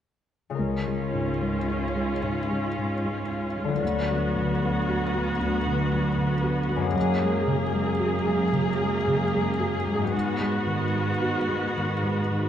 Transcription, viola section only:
0.59 3.78 C#4 soft
0.59 3.78 F4 soft
3.81 6.91 B3 soft
3.81 6.95 F#4 soft
6.95 10.10 A#3 soft
6.95 10.09 G#4 soft
10.13 12.49 B3 soft
10.13 12.49 F#4 soft

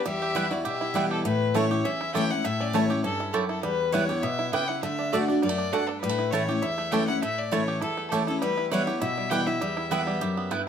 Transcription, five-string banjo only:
0.06 0.34 G3 medium
0.22 0.63 G4 medium
0.36 0.78 G3 medium
0.51 0.80 E4 medium
0.65 1.08 G4 medium
0.81 1.22 E4 medium
0.95 1.25 G3 medium
1.11 1.25 G4 medium
1.25 1.68 A3 medium
1.55 2.00 E4 medium
1.71 2.12 G4 medium
1.85 2.27 C#4 medium
2.01 2.30 E4 medium
2.15 2.57 G4 medium
2.30 2.74 E4 medium
2.44 2.87 A3 medium
2.60 3.02 C#4 medium
2.74 3.17 E4 medium
2.90 3.31 G4 medium
3.04 3.47 C#4 medium
3.20 3.48 E4 medium
3.34 3.64 G4 medium
3.49 3.64 E4 medium
3.63 4.06 G3 medium
3.93 4.36 E4 medium
4.09 4.51 G4 medium
4.23 4.66 B3 medium
4.39 4.68 E4 medium
4.53 4.83 G4 medium
4.69 4.83 E4 medium
4.83 5.12 A3 medium
4.99 5.27 D4 medium
5.13 5.42 A3 medium
5.28 5.57 D4 medium
5.42 5.49 G3 medium
5.49 5.73 A3 medium
5.58 5.72 D4 medium
5.73 5.88 D4 medium
5.89 6.03 D4 medium
6.03 6.09 G3 medium
6.09 6.32 A3 medium
6.19 6.62 E4 medium
6.33 6.75 A3 medium
6.49 6.90 G4 medium
6.62 7.08 E4 medium
6.78 7.19 A3 medium
6.92 7.35 G4 medium
7.08 7.81 E4 medium
7.22 7.51 A3 medium
7.52 7.95 A3 medium
7.68 8.09 G4 medium
7.81 8.27 E4 medium
7.97 8.39 A3 medium
8.12 8.42 G4 medium
8.27 8.57 E4 medium
8.42 8.70 G3 medium
8.58 9.01 E4 medium
8.71 9.14 G3 medium
8.87 9.29 G4 medium
9.01 9.46 E4 medium
9.18 9.59 G3 medium
9.31 9.61 G4 medium
9.47 9.77 E4 medium
9.61 10.04 G3 medium
9.77 10.18 E4 medium
9.91 10.34 B3 medium
10.07 10.48 G3 medium
10.21 10.64 G4 medium
10.37 10.69 B3 medium
10.51 10.69 E4 medium

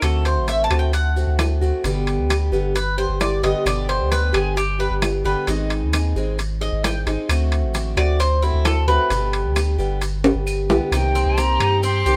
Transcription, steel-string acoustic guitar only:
0.01 0.46 D3 medium
0.01 0.47 A3 medium
0.01 0.47 C4 medium
0.01 0.48 F#4 medium
0.47 0.69 D3 soft
0.47 0.70 A3 medium
0.47 0.70 C4 soft
0.47 0.69 F#4 medium
0.70 0.92 A3 medium
0.70 0.93 C4 medium
0.70 0.92 F#4 medium
0.93 muted steel-string acoustic guitar stroke medium
1.16 1.62 A3 soft
1.16 1.61 C4 soft
1.16 1.60 F#4 soft
1.61 1.84 A3 medium
1.61 1.84 C4 medium
1.61 1.83 F#4 medium
1.84 2.29 B2 medium
1.84 2.28 D3 medium
1.84 2.29 G3 medium
1.84 2.30 B3 medium
1.84 2.30 G4 medium
2.29 2.52 D3 soft
2.29 2.52 G3 medium
2.29 2.51 B3 soft
2.29 2.51 G4 medium
2.52 2.74 D3 medium
2.52 2.74 G3 medium
2.52 2.74 B3 medium
2.52 2.74 G4 medium
2.75 muted steel-string acoustic guitar stroke medium
2.97 3.43 G3 soft
2.97 3.43 B3 soft
2.97 3.42 G4 soft
3.43 3.65 D3 medium
3.43 3.65 G3 medium
3.43 3.66 B3 medium
3.43 3.65 G4 medium
3.66 4.11 B2 medium
3.66 4.09 D3 medium
3.66 4.10 G3 medium
3.66 4.11 B3 medium
3.66 4.12 G4 medium
4.11 4.33 D3 soft
4.11 4.33 G3 soft
4.11 4.32 B3 medium
4.11 4.31 G4 medium
4.33 4.55 D3 medium
4.33 4.56 G3 medium
4.33 4.56 B3 medium
4.33 4.55 G4 medium
4.56 muted steel-string acoustic guitar stroke medium
4.79 5.25 G3 soft
4.79 5.24 B3 soft
4.79 5.23 G4 soft
5.24 5.48 D3 medium
5.24 5.47 G3 medium
5.24 5.47 B3 medium
5.24 5.47 G4 medium
5.47 5.92 D#3 medium
5.47 5.92 G#3 medium
5.47 5.92 C4 medium
5.47 5.93 D#4 medium
5.47 5.93 G#4 medium
5.93 6.15 G#3 soft
5.93 6.15 C4 medium
5.93 6.16 D#4 medium
5.93 6.15 G#4 medium
6.16 6.38 G#3 medium
6.16 6.38 C4 medium
6.16 6.38 D#4 medium
6.16 6.38 G#4 medium
6.39 muted steel-string acoustic guitar stroke medium
6.61 7.07 C4 soft
6.61 7.06 D#4 soft
6.61 7.05 G#4 medium
7.06 7.29 G#3 medium
7.06 7.29 C4 medium
7.06 7.29 D#4 medium
7.06 7.28 G#4 medium
7.29 7.73 D3 medium
7.29 7.74 A3 medium
7.29 7.74 C4 medium
7.29 7.75 F#4 medium
7.74 7.96 D3 soft
7.74 7.97 A3 medium
7.74 7.97 C4 medium
7.74 7.96 F#4 medium
7.97 8.19 A3 medium
7.97 8.20 C4 medium
7.97 8.19 F#4 medium
8.20 muted steel-string acoustic guitar stroke medium
8.43 8.88 A3 soft
8.43 8.88 C4 soft
8.43 8.87 F#4 medium
8.88 9.11 A3 medium
8.88 9.10 C4 medium
8.88 9.10 F#4 medium
9.11 9.55 B2 medium
9.11 9.54 D3 medium
9.11 9.55 G3 medium
9.11 9.56 B3 medium
9.11 9.56 G4 medium
9.55 9.78 D3 medium
9.55 9.78 G3 medium
9.55 9.78 B3 medium
9.55 9.77 G4 medium
9.78 10.01 D3 medium
9.78 10.01 G3 medium
9.78 10.01 B3 medium
9.78 10.00 G4 medium
10.02 muted steel-string acoustic guitar stroke medium
10.24 10.70 G3 soft
10.24 10.69 B3 soft
10.24 10.68 G4 soft
10.69 10.92 D3 medium
10.69 10.92 G3 medium
10.69 10.92 B3 medium
10.69 10.91 G4 medium
10.92 11.37 C3 medium
10.92 11.36 D#3 medium
10.92 11.37 A#3 medium
10.92 11.37 C4 medium
10.92 11.38 G4 medium
11.38 11.82 D#3 soft
11.38 11.82 A#3 soft
11.38 11.83 C4 soft
11.38 11.83 G4 medium
11.83 muted steel-string acoustic guitar stroke medium
12.06 12.16 D#3 medium
12.06 12.16 A#3 medium
12.06 12.16 C4 medium
12.06 12.16 G4 medium

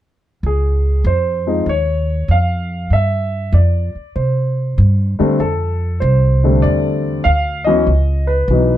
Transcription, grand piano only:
0.46 1.03 G#4 medium
1.07 1.64 C5 medium
1.47 1.65 F3 soft
1.47 1.65 G#3 soft
1.47 1.65 C4 soft
1.47 1.65 D#4 medium
1.69 2.32 C#5 medium
2.31 2.94 F5 medium
2.93 3.56 E5 medium
3.54 4.12 D5 medium
4.16 5.15 C5 medium
5.19 5.37 D3 medium
5.19 5.37 G3 medium
5.19 5.38 A3 medium
5.19 5.38 C4 medium
5.40 5.98 A4 medium
6.00 6.65 C5 medium
6.44 7.22 D3 medium
6.44 7.22 G3 medium
6.44 7.22 A3 medium
6.44 7.22 C4 medium
6.62 7.27 D5 medium
7.24 7.63 F5 medium
7.64 7.85 E3 medium
7.64 7.85 F#3 medium
7.64 7.86 B3 medium
7.64 8.30 D#5 medium
7.68 7.86 C#4 medium
8.27 8.77 B4 medium
8.50 8.77 E3 soft
8.50 8.77 F#3 soft
8.50 8.77 B3 soft
8.50 8.77 D#4 medium

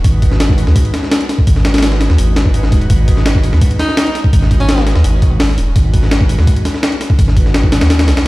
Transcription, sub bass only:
0.04 0.66 G#1 loud
0.67 0.75 D#2 medium
1.47 2.08 G#1 loud
2.10 2.18 D#2 medium
2.18 2.73 G#1 medium
2.72 2.88 D#1 medium
2.90 3.51 G#1 loud
3.53 3.61 D#2 medium
4.33 4.94 G#1 loud
4.96 5.03 D#2 medium
5.04 5.57 G#1 medium
5.58 5.66 D#1 loud
5.67 5.75 D#1 medium
5.76 6.37 G#1 loud
6.38 6.46 D#2 medium
7.19 7.80 G#1 loud
7.81 8.09 D#2 medium
8.08 8.28 B1 loud

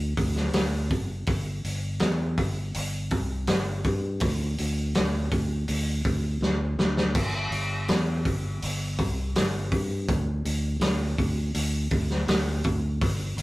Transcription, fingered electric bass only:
0.00 0.16 D2 medium
0.17 0.52 D2 medium
0.53 0.88 D2 medium
0.90 1.25 F#1 medium
1.27 1.62 G1 medium
1.65 1.99 G1 medium
2.01 2.36 E2 medium
2.38 2.73 G1 medium
2.76 3.10 G1 medium
3.12 3.46 C2 medium
3.47 3.83 G1 medium
3.85 4.20 G2 medium
4.21 4.56 D2 loud
4.59 4.94 D2 medium
4.97 5.31 D2 medium
5.32 5.67 D2 medium
5.69 6.04 D2 loud
6.05 6.40 D2 medium
6.41 6.76 D2 medium
6.79 7.14 D2 medium
7.14 7.50 G1 medium
7.51 7.86 G1 medium
7.89 8.24 E2 medium
8.25 8.60 G1 medium
8.63 8.97 G1 medium
8.99 9.34 C2 medium
9.37 9.71 G1 medium
9.72 10.07 G2 medium
10.08 10.43 D2 medium
10.45 10.79 D2 medium
10.80 11.15 D2 medium
11.18 11.53 D2 medium
11.55 11.89 D2 medium
11.91 12.26 D2 medium
12.28 12.62 D2 medium
12.65 13.00 D2 medium
13.02 13.36 G1 loud
13.36 13.42 G1 loud

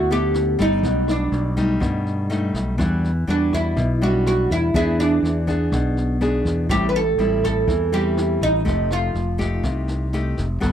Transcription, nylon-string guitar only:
0.00 0.81 D3 soft
0.11 0.55 B3 medium
0.11 0.56 A4 medium
0.59 1.53 G3 medium
0.59 1.53 A3 medium
0.83 1.79 B2 medium
1.57 2.26 G3 medium
1.57 2.26 A3 medium
1.57 2.26 D#4 medium
1.80 2.76 B2 soft
2.30 2.75 G3 medium
2.30 2.75 A3 soft
2.30 2.75 D#4 medium
2.78 3.74 E3 medium
2.78 3.10 G3 medium
2.78 3.10 D4 medium
2.78 3.10 F#4 medium
3.27 3.76 G3 soft
3.27 3.76 D4 medium
3.27 3.77 F#4 medium
3.77 4.72 B2 medium
4.02 4.71 G3 soft
4.02 4.71 D4 medium
4.02 4.71 F#4 medium
4.74 5.70 E3 medium
4.74 5.44 B3 medium
4.74 5.44 D4 medium
4.74 5.44 G#4 medium
5.47 6.17 B3 soft
5.47 6.17 D4 medium
5.47 6.17 G#4 medium
5.72 6.68 B2 medium
6.21 6.66 B3 medium
6.21 6.66 D4 medium
6.21 6.66 G#4 medium
6.69 7.65 A2 medium
6.69 7.01 G3 soft
6.69 7.01 C4 soft
6.69 7.02 E4 medium
7.19 7.88 G3 soft
7.19 7.88 C4 soft
7.19 7.89 E4 medium
7.68 8.63 E3 medium
7.92 8.62 G3 medium
7.92 8.62 C4 medium
7.92 8.62 E4 medium
8.65 9.61 F3 soft
8.65 9.14 A3 medium
8.65 9.14 D#4 soft
8.65 9.15 G4 medium
9.38 10.08 A3 soft
9.38 10.09 D#4 medium
9.38 10.09 G4 medium
9.63 10.59 C3 soft
10.13 10.45 A3 medium
10.13 10.45 D#4 medium
10.13 10.45 G4 medium
10.60 10.72 G3 medium
10.60 10.72 B3 medium
10.60 10.72 F#4 medium
10.60 10.72 A4 medium

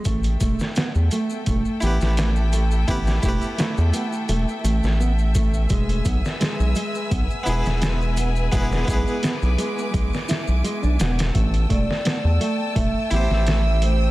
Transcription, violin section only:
0.05 5.66 A4 medium
0.05 11.31 E5 medium
0.05 5.66 G5 medium
5.69 11.30 B4 medium
5.69 11.30 G#5 medium
5.69 8.49 E6 medium
8.53 11.32 D6 medium
11.35 14.11 G5 medium
11.35 14.11 A5 medium
11.35 14.11 E6 loud

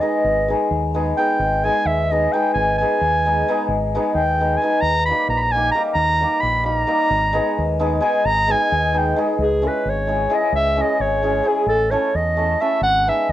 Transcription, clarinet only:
0.00 0.71 D#5 medium
1.17 1.66 G5 loud
1.64 1.88 G#5 loud
1.86 2.14 E5 medium
2.12 2.34 D#5 medium
2.32 2.53 G5 medium
2.54 2.77 G#5 medium
2.78 3.89 G#5 loud
4.14 4.59 G5 medium
4.57 4.83 G#5 medium
4.81 5.05 A#5 loud
5.05 5.27 B5 medium
5.30 5.38 A#5 medium
5.37 5.53 A#5 loud
5.37 5.42 B5 medium
5.52 5.71 G#5 loud
5.72 5.82 A#5 loud
5.94 6.42 A#5 loud
6.40 6.65 B5 medium
6.66 7.77 A#5 loud
8.00 8.27 G#5 loud
8.25 8.53 A#5 loud
8.51 8.99 G#5 loud
8.98 9.19 G5 medium
9.42 9.69 G#4 medium
9.67 9.91 B4 medium
9.90 10.36 C#5 medium
10.34 10.55 D#5 medium
10.56 10.84 E5 loud
10.82 11.03 D#5 medium
11.01 11.50 C#5 loud
11.49 11.68 G#4 medium
11.69 11.92 A4 loud
11.91 12.17 C#5 medium
12.16 12.63 D#5 medium
12.61 12.82 E5 loud
12.83 13.10 F#5 loud
13.09 13.32 E5 loud

